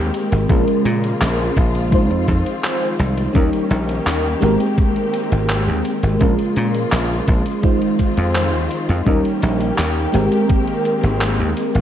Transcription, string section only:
0.00 0.45 D#3 medium
0.00 3.31 G#3 medium
0.00 0.46 A#3 medium
0.00 0.48 C4 medium
0.00 0.46 G4 medium
0.49 1.91 C#3 medium
0.49 3.32 F3 medium
0.49 1.91 A#3 medium
0.49 3.32 F4 medium
1.93 6.17 D#3 medium
1.93 3.34 C4 medium
3.35 4.41 G3 medium
3.35 6.18 A#3 medium
3.35 4.41 C#4 medium
3.35 6.18 G4 medium
4.42 9.02 G#3 medium
4.42 6.19 C4 medium
6.21 7.62 C#3 medium
6.21 9.04 F3 medium
6.21 7.62 A#3 medium
6.21 7.62 F4 medium
7.63 10.11 D#3 medium
7.63 9.05 C4 medium
7.63 9.05 F4 medium
9.07 10.13 G3 medium
9.07 11.81 A#3 medium
9.07 10.13 C#4 medium
9.07 11.81 G4 medium
10.14 11.81 D#3 medium
10.14 11.81 G#3 medium
10.14 11.81 C4 medium

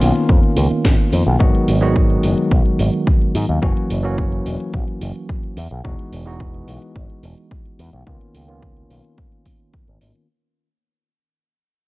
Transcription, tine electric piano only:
0.00 1.36 D#3 medium
0.00 1.36 A#3 medium
0.00 1.37 B3 medium
0.00 1.37 C#4 medium
0.00 1.37 F4 loud
1.39 1.78 D#3 medium
1.39 1.78 F#3 medium
1.39 1.78 G#3 medium
1.39 1.78 B3 medium
1.39 1.79 F#4 loud
1.81 3.58 D#3 medium
1.81 3.59 F#3 medium
1.81 3.59 G#3 medium
1.81 3.59 B3 medium
1.81 3.59 F#4 loud
3.62 4.00 E3 medium
3.62 4.01 F#3 medium
3.62 4.01 A#3 medium
3.62 4.01 C#4 medium
3.62 4.01 F#4 medium
4.03 5.54 E3 medium
4.03 5.55 F#3 medium
4.03 5.55 A#3 medium
4.03 5.55 C#4 medium
4.03 5.55 F#4 loud
5.84 6.23 E3 medium
5.84 6.23 G#3 medium
5.84 6.23 B3 medium
5.84 6.23 D#4 medium
5.84 6.23 F#4 loud
6.25 8.03 E3 medium
6.25 8.03 G#3 medium
6.25 8.03 B3 medium
6.25 8.04 D#4 medium
6.25 8.04 F#4 loud
8.06 8.45 D#3 medium
8.06 8.45 A#3 medium
8.06 8.45 B3 medium
8.06 8.46 C#4 medium
8.06 8.46 F4 medium
8.47 10.25 D#3 medium
8.47 10.25 A#3 medium
8.47 10.26 B3 medium
8.47 10.26 C#4 medium
8.47 10.26 F4 loud

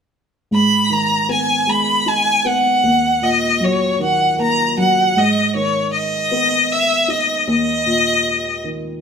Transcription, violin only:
0.54 0.94 B5 medium
0.93 1.30 A#5 medium
1.31 1.71 G#5 medium
1.70 2.10 B5 medium
2.08 2.48 G#5 medium
2.47 3.25 F#5 medium
3.23 3.66 D#5 medium
3.64 4.01 C#5 medium
4.03 4.37 F#5 medium
4.41 4.76 A#5 medium
4.80 5.20 F#5 medium
5.18 5.55 D#5 medium
5.56 5.91 C#5 medium
5.94 6.73 D#5 medium
6.72 7.11 E5 medium
7.10 7.48 D#5 medium
7.50 8.61 D#5 medium

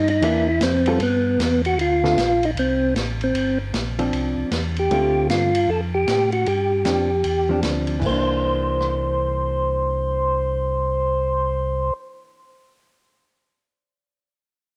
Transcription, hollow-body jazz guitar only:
0.22 0.45 E3 medium
0.22 0.46 A#3 medium
0.22 0.46 D4 medium
0.87 1.00 G3 medium
0.87 1.00 B3 medium
0.87 1.00 F4 medium
0.87 1.00 A4 medium
2.04 2.16 D3 medium
2.04 2.16 A3 medium
2.04 2.17 C4 medium
2.04 2.17 F4 medium
3.99 4.49 F3 medium
3.99 4.49 C4 medium
3.99 4.50 D4 medium
4.91 5.50 D3 medium
4.91 5.50 A3 medium
4.91 5.50 C4 medium
4.91 5.50 F4 medium
6.85 7.08 F3 medium
6.85 7.08 C4 medium
6.85 7.09 D4 medium
7.49 7.99 F3 medium
7.49 8.01 C4 medium
7.49 8.01 D4 medium
7.99 12.43 E3 medium
8.06 12.50 A#3 medium
8.11 12.55 D4 medium

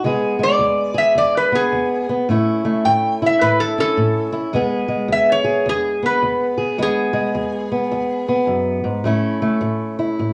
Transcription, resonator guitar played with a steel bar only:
0.43 0.98 D5 medium
0.98 1.17 E5 medium
1.18 1.36 D5 medium
1.37 1.55 B4 medium
1.55 2.10 G#4 medium
2.85 3.22 G5 medium
3.26 3.43 E5 medium
3.42 3.60 B4 medium
3.60 3.79 A4 medium
3.80 4.34 A4 loud
5.12 5.30 E5 medium
5.32 5.67 C#5 medium
5.69 6.04 G#4 medium
6.06 6.78 B4 medium
6.82 8.46 G#4 medium

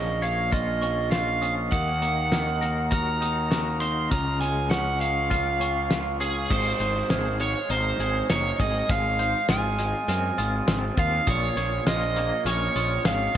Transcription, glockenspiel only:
0.00 0.52 C#6 medium
0.52 0.82 F6 medium
0.82 1.42 C#6 medium
1.41 1.71 D#6 medium
1.72 2.32 D#6 medium
2.33 2.91 F6 medium
2.92 3.22 F6 medium
3.22 3.80 D#6 medium
3.81 4.11 D#6 medium
4.11 4.71 F6 medium
4.71 5.31 C#6 medium
5.31 5.61 F6 medium
5.61 6.21 C#6 medium
6.20 6.49 D#6 medium
6.50 7.10 D#6 medium
7.10 7.69 F6 medium
7.70 8.00 F6 medium
8.00 8.59 D#6 medium
8.60 8.89 D#6 medium
8.90 9.49 F6 medium
9.50 10.09 D#6 medium
10.09 10.38 F6 medium
10.38 10.98 D#6 medium
10.97 11.27 F6 medium
11.27 11.87 D#6 medium
11.87 12.45 F6 medium
12.46 12.76 F6 medium
12.76 13.34 D#6 medium

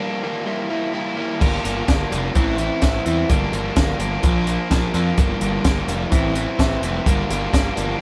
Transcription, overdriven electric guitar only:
0.00 0.22 G3 medium
0.00 0.22 A#3 medium
0.00 0.22 D4 medium
0.23 0.44 G3 medium
0.23 0.45 A#3 medium
0.23 0.45 D4 medium
0.46 0.68 G3 medium
0.46 0.68 A#3 medium
0.46 0.69 E4 medium
0.69 0.92 G3 medium
0.69 0.92 A#3 medium
0.69 0.93 E4 medium
0.93 1.16 G3 medium
0.93 1.16 A#3 medium
0.93 1.17 E4 medium
1.17 1.39 G3 medium
1.17 1.40 A#3 medium
1.17 1.40 E4 medium
1.40 1.63 G3 medium
1.40 1.64 A#3 medium
1.40 1.64 D4 medium
1.65 1.87 G3 medium
1.65 1.88 A#3 medium
1.65 1.88 D4 medium
1.88 2.10 G3 medium
1.88 2.10 A#3 medium
1.88 2.11 D4 medium
2.11 2.34 G3 medium
2.11 2.34 A#3 medium
2.11 2.34 D4 medium
2.35 2.57 E3 loud
2.35 2.58 C4 medium
2.35 2.58 E4 medium
2.58 2.81 E3 medium
2.58 2.81 C4 medium
2.58 2.82 E4 medium
2.82 3.04 E3 medium
2.82 3.04 C4 medium
2.82 3.05 E4 medium
3.05 3.28 E3 medium
3.05 3.28 C4 medium
3.05 3.28 E4 medium
3.29 3.51 G3 medium
3.29 3.51 A#3 medium
3.29 3.52 D4 loud
3.52 3.75 G3 medium
3.52 3.76 A#3 medium
3.52 3.76 D4 medium
3.76 3.98 G3 medium
3.76 3.99 A#3 medium
3.76 3.99 D4 medium
3.99 4.22 G3 medium
3.99 4.22 A#3 loud
3.99 4.22 D4 loud
4.23 4.46 F3 medium
4.23 4.46 A#3 medium
4.23 4.47 D4 loud
4.47 4.69 F3 medium
4.47 4.70 A#3 medium
4.47 4.71 D4 medium
4.70 4.93 F3 medium
4.70 4.93 A#3 medium
4.70 4.94 D4 medium
4.94 5.16 F3 medium
4.94 5.17 A#3 medium
4.94 5.17 D4 medium
5.18 5.40 G3 loud
5.18 5.40 A#3 medium
5.18 5.41 D4 loud
5.41 5.63 G3 medium
5.41 5.64 A#3 medium
5.41 5.64 D4 medium
5.64 5.87 G3 medium
5.64 5.87 A#3 medium
5.64 5.88 D4 medium
5.88 6.10 G3 medium
5.88 6.11 A#3 medium
5.88 6.11 D4 medium
6.11 6.34 E3 medium
6.11 6.35 C4 loud
6.11 6.35 E4 loud
6.35 6.58 E3 medium
6.35 6.58 C4 medium
6.35 6.59 E4 medium
6.59 6.82 E3 medium
6.59 6.83 C4 medium
6.59 6.83 E4 medium
6.83 7.05 E3 medium
6.83 7.05 C4 medium
6.83 7.06 E4 medium
7.07 7.29 G3 medium
7.07 7.29 A#3 medium
7.07 7.30 D4 loud
7.30 7.51 G3 medium
7.30 7.52 A#3 loud
7.30 7.53 D4 medium
7.52 7.75 G3 medium
7.52 7.75 A#3 medium
7.52 7.76 D4 medium
7.76 7.98 G3 medium
7.76 7.98 A#3 medium
7.76 7.99 D4 medium

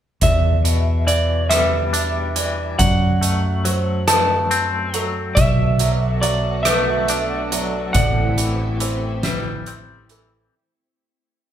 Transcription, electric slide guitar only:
0.23 1.04 E5 medium
1.07 1.49 D5 medium
1.50 2.78 E5 medium
2.79 4.04 F#5 medium
4.08 5.01 A5 medium
5.35 6.25 E5 medium
6.21 6.67 D5 medium
6.63 7.93 E5 medium
7.93 9.27 F#5 medium
9.24 10.17 E5 medium

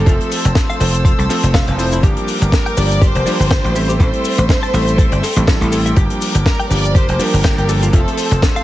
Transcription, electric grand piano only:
0.06 0.77 F3 medium
0.06 0.78 A3 medium
0.06 0.78 C4 medium
0.06 0.78 A4 medium
0.06 0.78 E5 medium
0.80 1.27 F3 medium
0.80 1.27 A3 medium
0.80 1.27 C4 medium
0.80 1.28 A4 medium
1.29 1.76 F3 medium
1.29 1.76 A3 medium
1.29 1.76 C4 medium
1.29 1.76 A4 loud
1.78 2.00 F3 medium
1.78 2.00 A3 medium
1.78 2.01 C4 medium
1.78 2.01 E4 medium
1.78 2.01 C5 medium
2.02 2.74 F3 medium
2.02 2.74 G3 medium
2.02 2.74 A#3 medium
2.02 2.75 D4 medium
2.02 2.75 G4 medium
2.77 3.24 F3 medium
2.77 3.24 G3 medium
2.77 3.24 A#3 medium
2.77 3.24 D4 medium
2.77 3.24 G4 medium
3.26 3.73 F3 medium
3.26 3.73 G3 medium
3.26 3.73 A#3 medium
3.26 3.73 D4 medium
3.26 3.73 G4 loud
3.75 3.97 G3 medium
3.75 3.97 A3 medium
3.75 3.97 C4 medium
3.75 3.97 E4 medium
3.75 3.98 C5 medium
3.99 4.71 G3 medium
3.99 4.71 A3 medium
3.99 4.71 C4 medium
3.99 4.71 E4 medium
3.99 4.72 A4 medium
4.74 5.21 G3 medium
4.74 5.21 A3 medium
4.74 5.21 C4 medium
4.74 5.21 E4 medium
4.74 5.21 A4 medium
5.37 5.45 G3 medium
5.37 5.45 A3 medium
5.37 5.45 C4 medium
5.37 5.45 E4 medium
5.37 5.45 A4 medium
5.47 5.94 G3 medium
5.47 5.94 A3 medium
5.47 5.94 C4 medium
5.47 5.94 E4 medium
5.47 5.94 A4 loud
5.96 6.67 F3 medium
5.96 6.68 G3 medium
5.96 6.68 A#3 medium
5.96 6.68 D4 medium
5.96 6.68 G4 medium
6.70 7.17 F3 medium
6.70 7.18 G3 medium
6.70 7.18 A#3 medium
6.70 7.18 D4 medium
6.70 7.18 G4 medium
7.19 7.66 F3 medium
7.19 7.66 G3 medium
7.19 7.66 A#3 medium
7.19 7.66 D4 medium
7.19 7.66 G4 loud
7.68 7.90 F3 medium
7.68 7.91 G3 medium
7.68 7.91 A#3 medium
7.68 7.91 D4 medium
7.68 7.91 A4 medium
7.93 8.64 F3 medium
7.93 8.64 A3 medium
7.93 8.64 C4 medium
7.93 8.64 A4 medium
7.93 8.64 E5 medium

